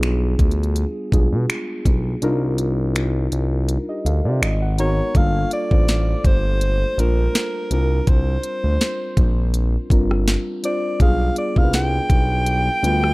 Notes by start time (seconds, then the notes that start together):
Already playing: B1 G3 B3 D4 F4 G#4
0.03 finger snap, closed hi-hat
0.39 D2, kick, closed hi-hat
0.51 closed hi-hat
0.63 closed hi-hat
0.76 closed hi-hat
1.12 B1 G3 G#3 D4 F4 G#4, kick, closed hi-hat
1.19 B3
1.32 B2
1.50 finger snap, closed hi-hat
1.85 B1, kick, closed hi-hat
2.22 C2 G3 D4 D#4 F4 A#4, closed hi-hat
2.58 closed hi-hat
2.96 finger snap, closed hi-hat
3.32 C2, closed hi-hat
3.69 closed hi-hat
3.89 G4 D#5
4.05 D2 A4 F5, closed hi-hat
4.25 C3 F4 D5
4.41 G#1 D#5, finger snap, closed hi-hat
4.62 F#5
4.78 G#3 B3 D#4 F#4 A#4 C#5 A#5, closed hi-hat
5.15 G1 G3 A#3 D4 F4 A4 F5, kick, closed hi-hat
5.51 D5, closed hi-hat
5.71 A1 G3 A3 D4 F4 C5, kick
5.78 A#3
5.88 snare, closed hi-hat
6.25 G1 C5, kick, closed hi-hat
6.61 closed hi-hat
6.97 A#1 G3 A#3 D4 F4 A#4 C5, closed hi-hat
7.35 snare, closed hi-hat
7.70 C2 G3 C4 D4 F4 A#4, closed hi-hat
8.07 C2 C5, kick, closed hi-hat
8.43 closed hi-hat
8.64 D2
8.81 snare, closed hi-hat
9.17 A#1, kick, closed hi-hat
9.54 closed hi-hat
9.90 G1 G3 C4 D4 F4 A#4, kick, closed hi-hat
10.11 cross-stick
10.28 snare, closed hi-hat
10.63 G3 C4 D4 F4 C5 D5, closed hi-hat
11.00 B1 G3 B3 D4 F4 G#4 F5, kick, closed hi-hat
11.36 D5, closed hi-hat
11.56 C2 G3 B3 D4 F4 A#4 F5, kick
11.64 B4
11.73 G5, snare, closed hi-hat
12.10 B1, kick, closed hi-hat
12.46 closed hi-hat
12.82 D2 G3 B3 D4 F4 B4, closed hi-hat
13.04 cross-stick